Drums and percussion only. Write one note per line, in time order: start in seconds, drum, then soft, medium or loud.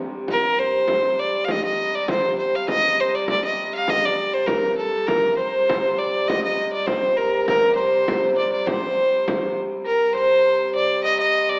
0.28 frame drum medium
0.58 frame drum soft
0.88 frame drum medium
1.48 frame drum medium
1.80 frame drum soft
2.08 frame drum medium
2.68 frame drum medium
2.99 frame drum soft
3.28 frame drum medium
3.88 frame drum medium
4.47 frame drum medium
5.08 frame drum medium
5.39 frame drum soft
5.69 frame drum medium
6.29 frame drum medium
6.59 frame drum soft
6.87 frame drum medium
7.48 frame drum medium
7.79 frame drum soft
8.08 frame drum medium
8.67 frame drum medium
8.99 frame drum soft
9.28 frame drum loud
9.57 frame drum soft